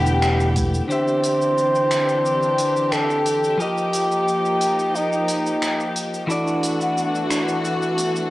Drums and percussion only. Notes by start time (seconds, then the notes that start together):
0.07 shaker
0.22 finger snap, shaker
0.40 shaker
0.56 kick, open hi-hat, high conga, shaker
0.74 shaker
0.91 shaker
1.08 shaker
1.24 open hi-hat, shaker
1.42 shaker
1.58 shaker
1.75 shaker
1.91 finger snap, open hi-hat, shaker
2.09 shaker
2.26 shaker
2.43 shaker
2.58 open hi-hat, shaker
2.77 shaker
2.92 finger snap, shaker
3.10 shaker
3.26 open hi-hat, shaker
3.44 shaker
3.60 shaker
3.78 shaker
3.93 open hi-hat, shaker
4.12 shaker
4.28 shaker
4.45 shaker
4.61 open hi-hat, shaker
4.79 shaker
4.96 shaker
5.13 shaker
5.28 open hi-hat, shaker
5.46 shaker
5.62 finger snap, shaker
5.80 shaker
5.96 open hi-hat, shaker
6.14 shaker
6.31 shaker
6.48 shaker
6.63 open hi-hat, shaker
6.81 shaker
6.98 shaker
7.15 shaker
7.30 finger snap, open hi-hat, shaker
7.49 shaker
7.65 shaker
7.82 shaker
7.98 open hi-hat, shaker
8.16 shaker